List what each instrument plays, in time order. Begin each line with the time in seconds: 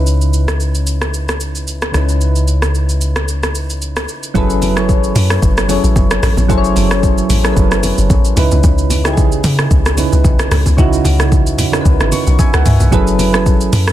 Already playing: fingered electric bass C#2, synth keys C#3 C#4 D#4 E4 B4
0.07 shaker
0.21 shaker
0.34 shaker
0.48 cross-stick, shaker
0.60 shaker
0.75 shaker
0.87 shaker
1.02 cross-stick, shaker
1.14 shaker
1.29 cross-stick, shaker
1.40 shaker
1.55 shaker
1.67 shaker
1.82 cross-stick, shaker
1.92 fingered electric bass C#2, synth keys C#3 C#4 D#4, cross-stick, shaker
1.96 synth keys E4 B4
2.09 shaker
2.21 shaker
2.36 shaker
2.48 shaker
2.62 cross-stick, shaker
2.75 shaker
2.89 shaker
3.01 shaker
3.16 cross-stick, shaker
3.28 shaker
3.43 cross-stick, shaker
3.55 shaker
3.70 shaker
3.82 shaker
3.96 cross-stick, shaker
4.09 shaker
4.23 shaker
4.34 log drum bass F#1, synth keys F#3 C#4 E4 G#4 A4 B4, kick, low conga, shaker
4.50 shaker
4.62 open hi-hat, high conga, shaker
4.76 synth keys F#3 C#4 E4 G#4 A4 C#5, cross-stick, shaker
4.89 kick, shaker
5.04 shaker
5.15 log drum bass F#2, open hi-hat, low conga, shaker
5.30 cross-stick, shaker
5.42 log drum bass F#1, kick, shaker
5.57 cross-stick, shaker
5.68 synth keys F#3 C#4 E4 G#4 A4 C#5, open hi-hat, high conga, shaker
5.84 log drum bass A1, shaker
5.96 log drum bass F#1, kick, high conga, shaker
6.11 cross-stick, shaker
6.23 log drum bass A1, cross-stick, open hi-hat, low conga, shaker
6.37 log drum bass A1, high conga, shaker
6.48 log drum bass F#1, synth keys F#3 C#4 E4 G#4 A4 C5, kick, low conga, shaker
6.58 synth keys C#5
6.64 shaker
6.76 log drum bass F#1, open hi-hat, high conga, shaker
6.91 cross-stick, shaker
7.03 kick, shaker
7.18 shaker
7.30 log drum bass A1, open hi-hat, low conga, shaker
7.44 synth keys F#3 C#4 E4 G#4 A4 A#4, cross-stick, shaker
7.53 log drum bass F#1, synth keys B4, kick
7.57 shaker
7.71 cross-stick, shaker
7.83 open hi-hat, high conga, shaker
7.98 log drum bass F#1, shaker
8.10 log drum bass A1, kick, high conga, shaker
8.25 shaker
8.36 log drum bass C#2, synth keys C#3 C#4 D#4 E4 B4, open hi-hat, low conga, shaker
8.51 log drum bass C#2, high conga, shaker
8.64 log drum bass C#2, kick, low conga, shaker
8.78 shaker
8.90 open hi-hat, high conga, shaker
9.04 synth keys C#3 C#4 D#4 E4 G4, cross-stick, shaker
9.13 synth keys G#4
9.17 kick, shaker
9.32 shaker
9.44 log drum bass C#3, open hi-hat, low conga, shaker
9.59 cross-stick, shaker
9.71 log drum bass C#2, kick, shaker
9.86 cross-stick, shaker
9.97 synth keys C#3 C#4 D#4 E4 B4, open hi-hat, high conga, shaker
10.13 log drum bass C#2, shaker
10.24 log drum bass B1, kick, high conga, shaker
10.39 cross-stick, shaker
10.51 log drum bass C#2, cross-stick, open hi-hat, low conga, shaker
10.66 log drum bass C#2, high conga, shaker
10.77 log drum bass C#2, synth keys C#3 C#4 D#4 E4 F#4, kick, low conga, shaker
10.93 shaker
11.05 log drum bass C#2, open hi-hat, high conga, shaker
11.20 cross-stick, shaker
11.32 kick, shaker
11.47 shaker
11.58 log drum bass E2, open hi-hat, low conga, shaker
11.72 synth keys C#3 C#4 D#4 E4 A#4, cross-stick, shaker
11.81 synth keys B4
11.85 log drum bass C#2, kick, shaker
12.00 log drum bass G#1, cross-stick, shaker
12.12 synth keys C#6, open hi-hat, high conga, shaker
12.27 log drum bass B1, shaker
12.39 synth keys E5 G#5, kick, high conga, shaker
12.54 log drum bass C#2, synth keys F#5, cross-stick, shaker
12.66 log drum bass C#2, synth keys E5 G#5, mid tom, open hi-hat, low conga, shaker
12.80 log drum bass B1, synth keys E5, high conga, shaker
12.91 log drum bass F#1, synth keys F#3 C#4 E4 G#4 A4 B4, kick, low conga, shaker
13.07 shaker
13.19 open hi-hat, high conga, shaker
13.33 synth keys F#3 C#4 E4 G#4 A4 B4, cross-stick, shaker
13.46 kick, shaker
13.61 shaker
13.73 log drum bass F#2, open hi-hat, low conga, shaker
13.88 cross-stick, shaker